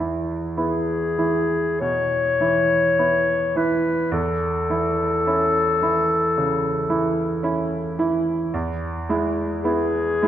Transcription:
Already playing: E2
0.00 E3 E4
0.57 B3 E4 G#4
1.18 E3 E4
1.80 B2 C#5
2.41 E3 E4
2.99 B3 E4
3.56 E3 E4 B4
4.12 E2 A4
4.70 E3 E4
5.27 C#4 E4
5.82 E3 E4
6.38 C#3
6.90 E3 E4
7.43 C#4 E4
7.99 E3 E4
8.54 E2
9.09 G#3 E4
9.62 B3 E4 G#4
10.22 G#3 E4

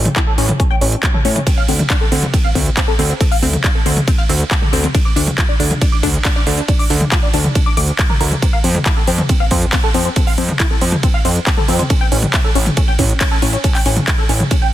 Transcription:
0.05 closed hi-hat, mid tom
0.16 E4, kick, clap, closed hi-hat
0.27 A4
0.38 A1 C#4, open hi-hat
0.49 closed hi-hat, mid tom
0.60 C#4, kick, closed hi-hat
0.71 G5
0.81 A1 C#4, open hi-hat
0.92 closed hi-hat
1.03 C#4, kick, clap, closed hi-hat
1.14 A4, mid tom
1.25 A2 C#4, open hi-hat
1.36 C#4, closed hi-hat, mid tom
1.47 C4, kick, closed hi-hat, ride
1.58 F5
1.68 D2 C4, open hi-hat
1.79 closed hi-hat, mid tom
1.90 D4, kick, clap, closed hi-hat, ride
2.01 A4
2.12 D2 C4, open hi-hat
2.23 closed hi-hat, mid tom
2.34 C4, kick, closed hi-hat, ride
2.44 F5
2.55 D2 C4, kick, open hi-hat
2.66 closed hi-hat
2.77 C4, kick, clap, closed hi-hat, ride
2.88 A4
2.99 D2 C4, open hi-hat
3.10 C4, closed hi-hat
3.21 C4, kick, closed hi-hat, ride
3.31 F5, open hi-hat
3.42 D2 C4, open hi-hat
3.53 closed hi-hat, mid tom
3.64 D4, kick, clap, closed hi-hat, ride
3.75 A4
3.86 D2 C4, open hi-hat
3.97 closed hi-hat, mid tom
4.07 C4, kick, closed hi-hat, ride
4.18 F5
4.29 D2 C4, open hi-hat
4.40 closed hi-hat
4.51 C4, kick, clap, closed hi-hat, ride
4.62 A4, mid tom
4.73 D2 C4, open hi-hat
4.84 C4, closed hi-hat, mid tom
4.94 D4, kick, closed hi-hat, ride
5.05 D6
5.16 D2 D4, open hi-hat
5.27 closed hi-hat, mid tom
5.38 F4, kick, clap, closed hi-hat, ride
5.49 D5
5.60 D2 D4, open hi-hat
5.71 closed hi-hat, mid tom
5.82 D4, kick, closed hi-hat, ride
5.92 D6
6.03 D2 D4, kick, open hi-hat
6.14 closed hi-hat
6.25 D4, kick, clap, closed hi-hat, ride
6.36 D5
6.47 D2 D4, open hi-hat
6.57 D4, closed hi-hat
6.68 D4, kick, closed hi-hat, ride
6.79 D6, open hi-hat
6.90 D2 D4, open hi-hat
7.01 closed hi-hat, mid tom
7.12 F4, kick, clap, closed hi-hat, ride
7.23 D5
7.34 D2 D4, open hi-hat
7.44 closed hi-hat, mid tom
7.55 D4, kick, closed hi-hat, ride
7.66 D6
7.77 D2 D6, open hi-hat
7.88 closed hi-hat
7.99 D5, kick, clap, closed hi-hat, ride
8.10 A#4, mid tom
8.20 D2 A#4, open hi-hat
8.32 closed hi-hat, mid tom
8.42 C4, kick, closed hi-hat, ride
8.53 F5
8.64 F2 C4, open hi-hat
8.75 closed hi-hat, mid tom
8.86 E4, kick, clap, closed hi-hat, ride
8.97 A4
9.07 F2 C4, open hi-hat
9.18 closed hi-hat, mid tom
9.29 C4, kick, closed hi-hat, ride
9.40 F5
9.51 F2 C4, kick, open hi-hat
9.62 closed hi-hat
9.73 C4, kick, clap, closed hi-hat, ride
9.84 A4
9.94 F2 C4, open hi-hat
10.05 C4, closed hi-hat
10.16 C4, kick, closed hi-hat, ride
10.27 F5, open hi-hat
10.38 F2 C4, open hi-hat
10.49 closed hi-hat, mid tom
10.60 E4, kick, clap, closed hi-hat, ride
10.71 A4
10.81 F2 C4, open hi-hat
10.92 closed hi-hat, mid tom
11.03 C4, kick, closed hi-hat, ride
11.14 F5
11.25 F2 C4, open hi-hat
11.36 closed hi-hat
11.47 C4, kick, clap, closed hi-hat, ride
11.57 A4, mid tom
11.68 F2 C4, open hi-hat
11.79 C4, closed hi-hat, mid tom
11.90 C#4, kick, closed hi-hat, ride
12.01 G5
12.12 A1 C#4, open hi-hat
12.23 closed hi-hat, mid tom
12.34 E4, kick, clap, closed hi-hat, ride
12.44 A4
12.55 A1 C#4, open hi-hat
12.66 closed hi-hat, mid tom
12.77 C#4, kick, closed hi-hat, ride
12.88 G5
12.99 A1 C#4, kick, open hi-hat
13.10 closed hi-hat
13.20 C#4, kick, clap, closed hi-hat, ride
13.31 A4
13.42 A1 C#4, open hi-hat
13.53 C#4, closed hi-hat
13.64 C#4, kick, closed hi-hat, ride
13.75 G5, clap, open hi-hat
13.86 A1 C#4, open hi-hat
13.97 closed hi-hat, mid tom
14.07 E4, kick, clap, closed hi-hat, ride
14.18 A4
14.29 A1 C#4, open hi-hat
14.40 closed hi-hat, mid tom
14.51 C#4, kick, closed hi-hat, ride
14.62 G5

